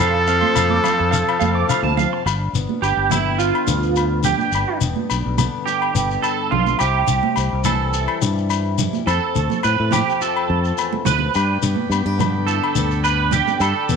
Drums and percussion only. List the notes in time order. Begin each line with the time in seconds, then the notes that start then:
0.27 shekere
0.42 high conga
0.55 low agogo, shekere
0.70 high conga
0.83 low conga, low agogo, shekere
1.13 shekere
1.29 low agogo
1.41 high conga, shekere
1.70 low agogo, shekere
1.84 high conga
1.98 high conga, low conga, shekere
2.27 low agogo, shekere
2.55 shekere
2.69 high conga
2.83 low agogo, shekere
3.10 high conga, low conga, low agogo, shekere
3.40 shekere
3.55 low agogo
3.67 shekere
3.83 shekere
3.96 low agogo, shekere
4.23 low conga, shekere
4.38 high conga, shekere
4.52 low agogo, shekere
4.81 shekere
4.96 high conga
5.10 low agogo, shekere
5.38 high conga, low conga, low agogo, shekere
5.67 shekere
5.82 low agogo
5.95 shekere
6.11 shekere
6.24 low agogo, shekere
6.52 low conga
6.66 high conga, shekere
6.79 low agogo, shekere
7.07 shekere
7.23 high conga
7.36 low agogo, shekere
7.64 high conga, low conga, low agogo, shekere
7.94 shekere
8.08 low agogo
8.22 shekere
8.38 shekere
8.50 low agogo, shekere
8.78 low conga, shekere
8.93 high conga, shekere
9.07 low agogo, shekere
9.35 shekere
9.50 high conga, low conga, shekere
9.63 low agogo, shekere
9.91 high conga, low conga, low agogo, shekere
10.10 shekere
10.22 shekere
10.37 low agogo
10.65 shekere
10.78 low agogo, shekere
10.93 high conga
11.05 low conga, shekere
11.19 high conga
11.34 low agogo, shekere
11.63 shekere
11.76 high conga
11.92 low agogo, shekere
12.20 high conga, low conga, low agogo, shekere
12.48 shekere
12.64 low agogo
12.76 shekere
12.91 shekere
13.04 low agogo, shekere
13.31 low conga, shekere
13.48 high conga, shekere
13.60 low agogo, shekere
13.89 shekere